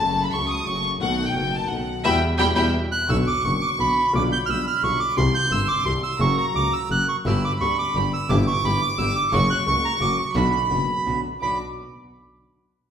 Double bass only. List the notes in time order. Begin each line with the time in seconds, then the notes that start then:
0.00 F#1
0.34 C#2
0.68 F#1
1.02 B1
1.36 F#1
1.70 B1
2.04 E2
2.39 E2
2.56 E2
3.09 B1
3.44 F#1
3.79 B1
4.14 B1
4.48 B1
4.83 B1
5.17 C2
5.52 G1
5.86 C2
6.20 F#1
6.55 C#2
6.90 F#1
7.26 G1
7.60 D2
7.95 G1
8.30 G1
8.64 G1
8.99 G1
9.33 F#1
9.67 C#2
10.01 F#1
10.35 B1
10.71 F#1
11.06 B1
11.41 B1